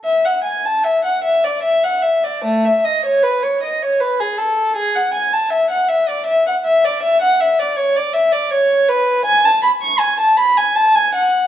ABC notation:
X:1
M:3/4
L:1/16
Q:1/4=79
K:Emix
V:1 name="Violin"
e f g a e f e d e f e d | A, e ^d c B c d c B G A2 | G f g a e f e d e f e d | e f e d c d e d c2 B2 |
[K:F#m] g a b c' g a b g a g f2 |]